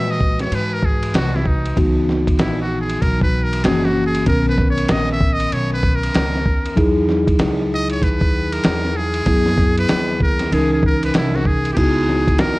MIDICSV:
0, 0, Header, 1, 5, 480
1, 0, Start_track
1, 0, Tempo, 625000
1, 1359, Time_signature, 4, 2, 24, 8
1, 9670, End_track
2, 0, Start_track
2, 0, Title_t, "Muted trumpet"
2, 0, Program_c, 0, 59
2, 0, Note_on_c, 0, 76, 108
2, 81, Note_on_c, 0, 75, 90
2, 93, Note_off_c, 0, 76, 0
2, 311, Note_off_c, 0, 75, 0
2, 315, Note_on_c, 0, 73, 83
2, 419, Note_on_c, 0, 71, 91
2, 431, Note_off_c, 0, 73, 0
2, 565, Note_on_c, 0, 70, 88
2, 577, Note_off_c, 0, 71, 0
2, 654, Note_on_c, 0, 68, 81
2, 665, Note_off_c, 0, 70, 0
2, 886, Note_off_c, 0, 68, 0
2, 891, Note_on_c, 0, 66, 85
2, 1039, Note_on_c, 0, 64, 76
2, 1051, Note_off_c, 0, 66, 0
2, 1129, Note_on_c, 0, 63, 67
2, 1141, Note_off_c, 0, 64, 0
2, 1364, Note_off_c, 0, 63, 0
2, 1841, Note_on_c, 0, 64, 78
2, 1989, Note_off_c, 0, 64, 0
2, 2008, Note_on_c, 0, 66, 76
2, 2152, Note_off_c, 0, 66, 0
2, 2156, Note_on_c, 0, 68, 85
2, 2313, Note_on_c, 0, 70, 96
2, 2324, Note_off_c, 0, 68, 0
2, 2476, Note_off_c, 0, 70, 0
2, 2481, Note_on_c, 0, 71, 88
2, 2638, Note_on_c, 0, 70, 79
2, 2649, Note_off_c, 0, 71, 0
2, 2796, Note_on_c, 0, 68, 87
2, 2808, Note_off_c, 0, 70, 0
2, 2958, Note_on_c, 0, 66, 84
2, 2969, Note_off_c, 0, 68, 0
2, 3118, Note_off_c, 0, 66, 0
2, 3122, Note_on_c, 0, 68, 93
2, 3269, Note_off_c, 0, 68, 0
2, 3286, Note_on_c, 0, 70, 98
2, 3431, Note_off_c, 0, 70, 0
2, 3447, Note_on_c, 0, 71, 94
2, 3592, Note_off_c, 0, 71, 0
2, 3612, Note_on_c, 0, 73, 97
2, 3773, Note_on_c, 0, 75, 105
2, 3785, Note_off_c, 0, 73, 0
2, 3926, Note_off_c, 0, 75, 0
2, 3936, Note_on_c, 0, 76, 101
2, 4097, Note_on_c, 0, 75, 99
2, 4108, Note_off_c, 0, 76, 0
2, 4246, Note_on_c, 0, 73, 107
2, 4258, Note_off_c, 0, 75, 0
2, 4399, Note_off_c, 0, 73, 0
2, 4403, Note_on_c, 0, 71, 94
2, 4571, Note_on_c, 0, 70, 94
2, 4582, Note_off_c, 0, 71, 0
2, 5285, Note_off_c, 0, 70, 0
2, 5948, Note_on_c, 0, 75, 113
2, 6072, Note_off_c, 0, 75, 0
2, 6076, Note_on_c, 0, 73, 97
2, 6168, Note_on_c, 0, 71, 103
2, 6180, Note_off_c, 0, 73, 0
2, 6550, Note_on_c, 0, 70, 97
2, 6561, Note_off_c, 0, 71, 0
2, 6886, Note_on_c, 0, 68, 104
2, 6897, Note_off_c, 0, 70, 0
2, 7510, Note_off_c, 0, 68, 0
2, 7517, Note_on_c, 0, 71, 106
2, 7821, Note_off_c, 0, 71, 0
2, 7856, Note_on_c, 0, 70, 98
2, 8093, Note_on_c, 0, 68, 92
2, 8104, Note_off_c, 0, 70, 0
2, 8234, Note_off_c, 0, 68, 0
2, 8241, Note_on_c, 0, 68, 79
2, 8320, Note_off_c, 0, 68, 0
2, 8343, Note_on_c, 0, 70, 85
2, 8469, Note_off_c, 0, 70, 0
2, 8485, Note_on_c, 0, 71, 80
2, 8562, Note_off_c, 0, 71, 0
2, 8576, Note_on_c, 0, 64, 80
2, 8721, Note_on_c, 0, 66, 81
2, 8732, Note_off_c, 0, 64, 0
2, 8808, Note_on_c, 0, 68, 90
2, 8820, Note_off_c, 0, 66, 0
2, 9002, Note_off_c, 0, 68, 0
2, 9007, Note_on_c, 0, 67, 76
2, 9039, Note_on_c, 0, 68, 94
2, 9050, Note_off_c, 0, 67, 0
2, 9525, Note_on_c, 0, 70, 96
2, 9537, Note_off_c, 0, 68, 0
2, 9670, Note_off_c, 0, 70, 0
2, 9670, End_track
3, 0, Start_track
3, 0, Title_t, "Tine electric piano"
3, 0, Program_c, 1, 4
3, 0, Note_on_c, 1, 52, 63
3, 0, Note_on_c, 1, 56, 60
3, 0, Note_on_c, 1, 66, 69
3, 0, Note_on_c, 1, 71, 61
3, 1323, Note_off_c, 1, 52, 0
3, 1325, Note_off_c, 1, 56, 0
3, 1333, Note_off_c, 1, 66, 0
3, 1352, Note_on_c, 1, 52, 63
3, 1354, Note_off_c, 1, 71, 0
3, 1354, Note_on_c, 1, 59, 56
3, 1361, Note_on_c, 1, 63, 56
3, 1367, Note_on_c, 1, 66, 69
3, 2766, Note_off_c, 1, 52, 0
3, 2768, Note_off_c, 1, 59, 0
3, 2771, Note_off_c, 1, 63, 0
3, 2774, Note_off_c, 1, 66, 0
3, 2790, Note_on_c, 1, 52, 65
3, 2797, Note_on_c, 1, 58, 60
3, 2801, Note_on_c, 1, 66, 72
3, 2803, Note_on_c, 1, 61, 63
3, 3269, Note_on_c, 1, 51, 64
3, 3270, Note_off_c, 1, 61, 0
3, 3273, Note_on_c, 1, 59, 61
3, 3274, Note_off_c, 1, 52, 0
3, 3278, Note_off_c, 1, 58, 0
3, 3279, Note_on_c, 1, 61, 62
3, 3280, Note_off_c, 1, 66, 0
3, 3287, Note_on_c, 1, 70, 68
3, 5163, Note_off_c, 1, 51, 0
3, 5165, Note_off_c, 1, 59, 0
3, 5168, Note_off_c, 1, 61, 0
3, 5172, Note_off_c, 1, 70, 0
3, 5187, Note_on_c, 1, 54, 73
3, 5193, Note_on_c, 1, 63, 72
3, 5201, Note_on_c, 1, 64, 69
3, 5205, Note_on_c, 1, 68, 84
3, 7082, Note_off_c, 1, 54, 0
3, 7085, Note_off_c, 1, 63, 0
3, 7089, Note_off_c, 1, 64, 0
3, 7091, Note_off_c, 1, 68, 0
3, 7109, Note_on_c, 1, 54, 62
3, 7115, Note_on_c, 1, 59, 60
3, 7119, Note_on_c, 1, 64, 66
3, 7127, Note_on_c, 1, 68, 73
3, 8054, Note_off_c, 1, 54, 0
3, 8058, Note_off_c, 1, 59, 0
3, 8059, Note_off_c, 1, 64, 0
3, 8064, Note_off_c, 1, 68, 0
3, 8076, Note_on_c, 1, 52, 68
3, 8085, Note_on_c, 1, 61, 60
3, 8092, Note_on_c, 1, 63, 62
3, 8098, Note_on_c, 1, 70, 78
3, 9018, Note_off_c, 1, 52, 0
3, 9023, Note_off_c, 1, 61, 0
3, 9024, Note_on_c, 1, 64, 61
3, 9026, Note_off_c, 1, 63, 0
3, 9029, Note_off_c, 1, 70, 0
3, 9029, Note_on_c, 1, 59, 56
3, 9039, Note_on_c, 1, 63, 60
3, 9044, Note_on_c, 1, 66, 74
3, 9670, Note_off_c, 1, 59, 0
3, 9670, Note_off_c, 1, 63, 0
3, 9670, Note_off_c, 1, 64, 0
3, 9670, Note_off_c, 1, 66, 0
3, 9670, End_track
4, 0, Start_track
4, 0, Title_t, "Upright bass"
4, 0, Program_c, 2, 32
4, 0, Note_on_c, 2, 46, 93
4, 373, Note_off_c, 2, 46, 0
4, 396, Note_on_c, 2, 44, 86
4, 853, Note_off_c, 2, 44, 0
4, 874, Note_on_c, 2, 36, 95
4, 1332, Note_off_c, 2, 36, 0
4, 1361, Note_on_c, 2, 37, 96
4, 1816, Note_off_c, 2, 37, 0
4, 1833, Note_on_c, 2, 34, 84
4, 2292, Note_off_c, 2, 34, 0
4, 2319, Note_on_c, 2, 35, 88
4, 2775, Note_off_c, 2, 35, 0
4, 2804, Note_on_c, 2, 30, 96
4, 3257, Note_off_c, 2, 30, 0
4, 3279, Note_on_c, 2, 35, 101
4, 3735, Note_off_c, 2, 35, 0
4, 3761, Note_on_c, 2, 34, 90
4, 4216, Note_off_c, 2, 34, 0
4, 4241, Note_on_c, 2, 35, 85
4, 4696, Note_off_c, 2, 35, 0
4, 4720, Note_on_c, 2, 37, 89
4, 4947, Note_off_c, 2, 37, 0
4, 4957, Note_on_c, 2, 39, 89
4, 5186, Note_off_c, 2, 39, 0
4, 5200, Note_on_c, 2, 40, 109
4, 5655, Note_off_c, 2, 40, 0
4, 5678, Note_on_c, 2, 37, 96
4, 6134, Note_off_c, 2, 37, 0
4, 6160, Note_on_c, 2, 39, 90
4, 6615, Note_off_c, 2, 39, 0
4, 6640, Note_on_c, 2, 40, 101
4, 7095, Note_off_c, 2, 40, 0
4, 7116, Note_on_c, 2, 42, 116
4, 7573, Note_off_c, 2, 42, 0
4, 7606, Note_on_c, 2, 39, 88
4, 8058, Note_off_c, 2, 39, 0
4, 8081, Note_on_c, 2, 37, 106
4, 8535, Note_off_c, 2, 37, 0
4, 8566, Note_on_c, 2, 36, 85
4, 9018, Note_off_c, 2, 36, 0
4, 9040, Note_on_c, 2, 37, 100
4, 9495, Note_off_c, 2, 37, 0
4, 9526, Note_on_c, 2, 39, 88
4, 9670, Note_off_c, 2, 39, 0
4, 9670, End_track
5, 0, Start_track
5, 0, Title_t, "Drums"
5, 157, Note_on_c, 9, 36, 80
5, 234, Note_off_c, 9, 36, 0
5, 302, Note_on_c, 9, 51, 51
5, 309, Note_on_c, 9, 38, 33
5, 378, Note_off_c, 9, 51, 0
5, 386, Note_off_c, 9, 38, 0
5, 399, Note_on_c, 9, 51, 65
5, 476, Note_off_c, 9, 51, 0
5, 635, Note_on_c, 9, 36, 86
5, 712, Note_off_c, 9, 36, 0
5, 789, Note_on_c, 9, 51, 64
5, 866, Note_off_c, 9, 51, 0
5, 877, Note_on_c, 9, 44, 55
5, 877, Note_on_c, 9, 51, 70
5, 884, Note_on_c, 9, 38, 108
5, 953, Note_off_c, 9, 44, 0
5, 953, Note_off_c, 9, 51, 0
5, 961, Note_off_c, 9, 38, 0
5, 1043, Note_on_c, 9, 38, 31
5, 1117, Note_on_c, 9, 36, 88
5, 1120, Note_off_c, 9, 38, 0
5, 1194, Note_off_c, 9, 36, 0
5, 1271, Note_on_c, 9, 51, 48
5, 1348, Note_off_c, 9, 51, 0
5, 1359, Note_on_c, 9, 36, 108
5, 1360, Note_on_c, 9, 51, 64
5, 1435, Note_off_c, 9, 36, 0
5, 1437, Note_off_c, 9, 51, 0
5, 1607, Note_on_c, 9, 38, 33
5, 1683, Note_off_c, 9, 38, 0
5, 1746, Note_on_c, 9, 36, 91
5, 1749, Note_on_c, 9, 51, 61
5, 1822, Note_off_c, 9, 36, 0
5, 1826, Note_off_c, 9, 51, 0
5, 1834, Note_on_c, 9, 44, 51
5, 1834, Note_on_c, 9, 51, 71
5, 1838, Note_on_c, 9, 38, 104
5, 1911, Note_off_c, 9, 44, 0
5, 1911, Note_off_c, 9, 51, 0
5, 1915, Note_off_c, 9, 38, 0
5, 2223, Note_on_c, 9, 51, 52
5, 2300, Note_off_c, 9, 51, 0
5, 2318, Note_on_c, 9, 36, 67
5, 2320, Note_on_c, 9, 51, 64
5, 2395, Note_off_c, 9, 36, 0
5, 2397, Note_off_c, 9, 51, 0
5, 2468, Note_on_c, 9, 36, 91
5, 2545, Note_off_c, 9, 36, 0
5, 2709, Note_on_c, 9, 51, 70
5, 2786, Note_off_c, 9, 51, 0
5, 2794, Note_on_c, 9, 44, 53
5, 2794, Note_on_c, 9, 51, 73
5, 2802, Note_on_c, 9, 38, 104
5, 2871, Note_off_c, 9, 44, 0
5, 2871, Note_off_c, 9, 51, 0
5, 2879, Note_off_c, 9, 38, 0
5, 2958, Note_on_c, 9, 38, 33
5, 3035, Note_off_c, 9, 38, 0
5, 3187, Note_on_c, 9, 51, 56
5, 3263, Note_off_c, 9, 51, 0
5, 3276, Note_on_c, 9, 51, 68
5, 3278, Note_on_c, 9, 36, 103
5, 3352, Note_off_c, 9, 51, 0
5, 3354, Note_off_c, 9, 36, 0
5, 3519, Note_on_c, 9, 36, 86
5, 3525, Note_on_c, 9, 38, 32
5, 3596, Note_off_c, 9, 36, 0
5, 3601, Note_off_c, 9, 38, 0
5, 3670, Note_on_c, 9, 51, 59
5, 3747, Note_off_c, 9, 51, 0
5, 3753, Note_on_c, 9, 44, 48
5, 3753, Note_on_c, 9, 51, 68
5, 3758, Note_on_c, 9, 38, 109
5, 3830, Note_off_c, 9, 44, 0
5, 3830, Note_off_c, 9, 51, 0
5, 3835, Note_off_c, 9, 38, 0
5, 4000, Note_on_c, 9, 36, 82
5, 4077, Note_off_c, 9, 36, 0
5, 4147, Note_on_c, 9, 51, 55
5, 4224, Note_off_c, 9, 51, 0
5, 4241, Note_on_c, 9, 51, 60
5, 4318, Note_off_c, 9, 51, 0
5, 4477, Note_on_c, 9, 36, 87
5, 4554, Note_off_c, 9, 36, 0
5, 4633, Note_on_c, 9, 51, 68
5, 4710, Note_off_c, 9, 51, 0
5, 4719, Note_on_c, 9, 44, 53
5, 4719, Note_on_c, 9, 51, 71
5, 4727, Note_on_c, 9, 38, 111
5, 4795, Note_off_c, 9, 44, 0
5, 4795, Note_off_c, 9, 51, 0
5, 4803, Note_off_c, 9, 38, 0
5, 4882, Note_on_c, 9, 38, 32
5, 4958, Note_off_c, 9, 38, 0
5, 4958, Note_on_c, 9, 36, 89
5, 5035, Note_off_c, 9, 36, 0
5, 5110, Note_on_c, 9, 51, 51
5, 5187, Note_off_c, 9, 51, 0
5, 5199, Note_on_c, 9, 36, 103
5, 5200, Note_on_c, 9, 51, 63
5, 5276, Note_off_c, 9, 36, 0
5, 5277, Note_off_c, 9, 51, 0
5, 5443, Note_on_c, 9, 38, 35
5, 5520, Note_off_c, 9, 38, 0
5, 5587, Note_on_c, 9, 36, 92
5, 5590, Note_on_c, 9, 51, 57
5, 5663, Note_off_c, 9, 36, 0
5, 5667, Note_off_c, 9, 51, 0
5, 5675, Note_on_c, 9, 44, 49
5, 5675, Note_on_c, 9, 51, 74
5, 5680, Note_on_c, 9, 38, 102
5, 5752, Note_off_c, 9, 44, 0
5, 5752, Note_off_c, 9, 51, 0
5, 5757, Note_off_c, 9, 38, 0
5, 6064, Note_on_c, 9, 51, 54
5, 6140, Note_off_c, 9, 51, 0
5, 6158, Note_on_c, 9, 36, 73
5, 6164, Note_on_c, 9, 51, 65
5, 6235, Note_off_c, 9, 36, 0
5, 6240, Note_off_c, 9, 51, 0
5, 6308, Note_on_c, 9, 36, 89
5, 6385, Note_off_c, 9, 36, 0
5, 6548, Note_on_c, 9, 51, 67
5, 6625, Note_off_c, 9, 51, 0
5, 6634, Note_on_c, 9, 44, 49
5, 6634, Note_on_c, 9, 51, 75
5, 6642, Note_on_c, 9, 38, 104
5, 6711, Note_off_c, 9, 44, 0
5, 6711, Note_off_c, 9, 51, 0
5, 6719, Note_off_c, 9, 38, 0
5, 6797, Note_on_c, 9, 38, 30
5, 6874, Note_off_c, 9, 38, 0
5, 7021, Note_on_c, 9, 51, 55
5, 7097, Note_off_c, 9, 51, 0
5, 7113, Note_on_c, 9, 51, 67
5, 7116, Note_on_c, 9, 36, 103
5, 7189, Note_off_c, 9, 51, 0
5, 7192, Note_off_c, 9, 36, 0
5, 7266, Note_on_c, 9, 38, 34
5, 7342, Note_off_c, 9, 38, 0
5, 7355, Note_on_c, 9, 36, 94
5, 7356, Note_on_c, 9, 38, 34
5, 7432, Note_off_c, 9, 36, 0
5, 7433, Note_off_c, 9, 38, 0
5, 7508, Note_on_c, 9, 51, 62
5, 7584, Note_off_c, 9, 51, 0
5, 7594, Note_on_c, 9, 44, 49
5, 7594, Note_on_c, 9, 51, 69
5, 7598, Note_on_c, 9, 38, 108
5, 7670, Note_off_c, 9, 44, 0
5, 7670, Note_off_c, 9, 51, 0
5, 7675, Note_off_c, 9, 38, 0
5, 7839, Note_on_c, 9, 36, 84
5, 7915, Note_off_c, 9, 36, 0
5, 7984, Note_on_c, 9, 51, 59
5, 7991, Note_on_c, 9, 38, 34
5, 8061, Note_off_c, 9, 51, 0
5, 8068, Note_off_c, 9, 38, 0
5, 8085, Note_on_c, 9, 51, 66
5, 8161, Note_off_c, 9, 51, 0
5, 8318, Note_on_c, 9, 36, 95
5, 8395, Note_off_c, 9, 36, 0
5, 8471, Note_on_c, 9, 51, 69
5, 8547, Note_off_c, 9, 51, 0
5, 8555, Note_on_c, 9, 44, 58
5, 8555, Note_on_c, 9, 51, 74
5, 8563, Note_on_c, 9, 38, 104
5, 8632, Note_off_c, 9, 44, 0
5, 8632, Note_off_c, 9, 51, 0
5, 8640, Note_off_c, 9, 38, 0
5, 8723, Note_on_c, 9, 38, 34
5, 8796, Note_on_c, 9, 36, 92
5, 8800, Note_off_c, 9, 38, 0
5, 8873, Note_off_c, 9, 36, 0
5, 8948, Note_on_c, 9, 51, 53
5, 9025, Note_off_c, 9, 51, 0
5, 9036, Note_on_c, 9, 51, 65
5, 9037, Note_on_c, 9, 49, 88
5, 9038, Note_on_c, 9, 36, 102
5, 9113, Note_off_c, 9, 49, 0
5, 9113, Note_off_c, 9, 51, 0
5, 9115, Note_off_c, 9, 36, 0
5, 9286, Note_on_c, 9, 38, 30
5, 9362, Note_off_c, 9, 38, 0
5, 9427, Note_on_c, 9, 36, 94
5, 9430, Note_on_c, 9, 51, 59
5, 9504, Note_off_c, 9, 36, 0
5, 9507, Note_off_c, 9, 51, 0
5, 9511, Note_on_c, 9, 44, 50
5, 9511, Note_on_c, 9, 51, 73
5, 9515, Note_on_c, 9, 38, 109
5, 9588, Note_off_c, 9, 44, 0
5, 9588, Note_off_c, 9, 51, 0
5, 9592, Note_off_c, 9, 38, 0
5, 9670, End_track
0, 0, End_of_file